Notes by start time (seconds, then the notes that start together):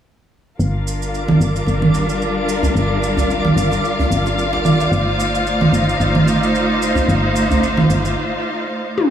0.59 G1 G3 D4 F4 A#4 D5 F5, shaker
0.87 shaker
1.02 shaker
1.14 shaker
1.28 djembe tone, low conga
1.40 G1, shaker
1.56 shaker
1.66 G1, djembe slap, shaker
1.82 djembe tone, low conga
1.94 djembe slap, shaker
2.09 shaker
2.22 shaker
2.49 shaker
2.63 djembe bass, shaker
2.75 G1, shaker
3.02 djembe slap, shaker
3.17 djembe bass, shaker
3.31 shaker
3.45 djembe tone, low conga
3.56 G1, shaker
3.72 djembe slap, shaker
3.85 shaker
3.99 djembe bass
4.10 G1, shaker
4.26 djembe slap, djembe tone, shaker
4.39 shaker
4.53 djembe slap
4.65 low conga, shaker
4.80 djembe slap, shaker
4.91 G1 A3 D#4 C5, shaker
5.20 shaker
5.35 shaker
5.47 shaker
5.61 djembe tone, low conga
5.73 G1, shaker
5.89 shaker
6.00 G1, djembe slap, shaker
6.15 djembe tone, low conga
6.27 djembe slap, shaker
6.43 shaker
6.55 shaker
6.82 shaker
6.95 djembe bass, shaker
7.08 G1, shaker
7.35 djembe slap, shaker
7.50 djembe bass, shaker
7.63 shaker
7.77 djembe tone, low conga
7.90 G1, djembe tone, shaker
8.05 djembe slap, shaker
8.98 high tom